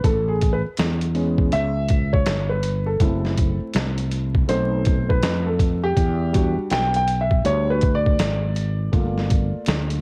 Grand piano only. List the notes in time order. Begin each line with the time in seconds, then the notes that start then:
0.04 A4
0.28 G#4
0.53 B4
1.15 G#3 B3 C#4
1.53 E5
2.13 C#5
2.50 B4
2.87 A4
3.00 A3 C4 E4
4.48 A3 C4 D#4 C5
5.09 B4
5.46 A4
5.83 G4
6.33 G3 D4 F#4
6.71 G5
6.96 G5
7.21 E5
7.44 G3 D4 F#4 C#5
7.70 B4
7.95 D5
8.92 A3 A#3 F4